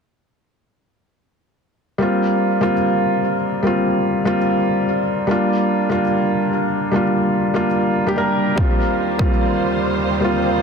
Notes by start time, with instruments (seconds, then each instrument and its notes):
1.98 felt piano G3 A#3 C4 F4
2.61 felt piano G3 A#3 C4 F4
3.63 felt piano G3 A#3 C4
3.67 felt piano F4
4.25 felt piano G3 A#3 C4 F4
5.27 felt piano G3 A#3 D4 F4
5.89 felt piano G3 A#3 D4 F4
6.91 felt piano G3 A#3 D4
6.95 felt piano F4
7.54 felt piano G3 A#3 D4 F4
8.07 felt piano G3 A#3 D4 G4
8.16 felt piano G3 A#3 D4 A#4
8.56 string section D#2 D#3 G3 F4 C5, felt piano G3 A#3, kick
8.60 felt piano F4
9.19 felt piano G3 A#3 C4 F4, kick
10.20 felt piano G3 A#3 C4 F4